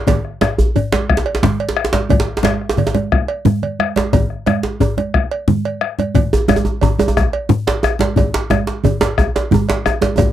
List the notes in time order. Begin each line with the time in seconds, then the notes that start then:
0.07 bombo low, cowbell, djembe slap, djembe bass, low conga
0.25 bombo rim
0.41 bombo rim, cowbell, djembe slap, high conga, djembe tone
0.58 djembe bass
0.76 cowbell, high conga, low conga, djembe bass
0.92 cowbell, djembe slap, djembe tone, high conga
1.10 bombo rim, bombo low
1.17 djembe slap
1.26 cowbell
1.35 djembe slap
1.43 djembe slap, high conga, djembe tone, low conga, djembe bass
1.60 cowbell, djembe slap
1.69 djembe slap
1.77 bombo rim, high conga
1.85 djembe slap
1.93 cowbell, djembe slap, high conga, djembe tone
2.09 bombo rim, bombo low, cowbell, low conga, djembe bass
2.20 djembe slap
2.27 bombo rim, djembe slap, high conga
2.37 djembe slap
2.43 cowbell, djembe slap, djembe tone, high conga
2.45 bombo rim, djembe slap
2.61 bombo rim
2.69 djembe slap
2.77 bombo rim, cowbell, djembe slap, djembe bass, low conga
2.87 djembe slap
2.94 cowbell, djembe slap, djembe tone, high conga
3.11 bombo rim, bombo low, djembe slap
3.28 bombo rim, cowbell
3.45 bombo rim, djembe slap, high conga, djembe tone, low conga, djembe bass
3.62 cowbell, low conga
3.79 bombo rim, high conga
3.96 cowbell, djembe slap, high conga
4.13 bombo low, cowbell, djembe tone, djembe bass, low conga
4.30 bombo rim
4.46 bombo rim, cowbell, djembe slap, djembe tone, high conga
4.63 djembe slap
4.80 cowbell, high conga, djembe tone, djembe bass, low conga
4.97 cowbell, djembe slap, high conga, djembe tone
5.14 bombo rim, bombo low
5.31 cowbell
5.48 djembe slap, djembe tone, high conga, djembe bass, low conga
5.64 cowbell, djembe slap
5.81 bombo rim, high conga
5.99 cowbell, djembe slap, djembe tone, high conga
6.15 bombo low, cowbell, djembe bass, low conga
6.33 bombo rim, djembe tone
6.48 bombo rim, cowbell, djembe slap, high conga, djembe tone
6.56 djembe tone
6.65 djembe slap, djembe tone
6.81 cowbell, high conga, djembe tone, low conga, djembe bass
6.99 cowbell, djembe slap, high conga, djembe tone
7.08 djembe tone
7.17 bombo rim, bombo low, djembe tone
7.33 cowbell
7.49 djembe slap, high conga, djembe tone, low conga, djembe bass
7.66 cowbell, djembe slap
7.83 bombo rim, high conga, djembe tone
7.99 cowbell, djembe slap, djembe tone, high conga
8.16 bombo low, cowbell, djembe tone, djembe bass, low conga
8.34 bombo rim, djembe slap
8.50 bombo rim, cowbell, djembe slap, djembe tone, high conga
8.67 djembe slap
8.84 cowbell, high conga, djembe tone, low conga, djembe bass
9.01 cowbell, djembe slap, high conga, djembe tone
9.18 bombo rim, bombo low, djembe tone
9.36 cowbell, djembe slap
9.51 djembe slap, high conga, djembe tone, low conga, djembe bass
9.54 djembe tone
9.68 cowbell, djembe slap
9.84 bombo rim, high conga, djembe tone
10.01 cowbell, djembe slap, high conga, djembe tone
10.17 bombo low, cowbell, high conga, djembe tone, low conga, djembe bass